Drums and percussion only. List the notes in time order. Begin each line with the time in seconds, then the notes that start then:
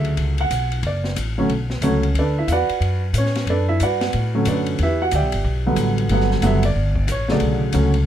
0.05 ride
0.17 ride
0.38 ride
0.51 hi-hat pedal, ride
0.72 ride
0.83 ride
1.04 snare
1.16 hi-hat pedal, ride
1.49 ride
1.70 snare
1.82 hi-hat pedal, ride
2.03 ride
2.15 ride
2.48 hi-hat pedal, ride
2.69 ride
2.82 ride
3.14 hi-hat pedal, ride
3.26 snare
3.35 snare, ride
3.47 ride
3.80 hi-hat pedal, ride
4.01 snare, ride
4.13 ride
4.45 hi-hat pedal, ride
4.66 ride
4.79 ride
5.11 hi-hat pedal, ride
5.32 ride
5.76 hi-hat pedal, ride
5.98 ride
6.09 ride
6.20 snare
6.31 snare
6.42 hi-hat pedal, ride
6.63 ride
6.95 kick
7.08 hi-hat pedal, ride
7.29 snare
7.40 ride
7.73 hi-hat pedal, ride
7.94 ride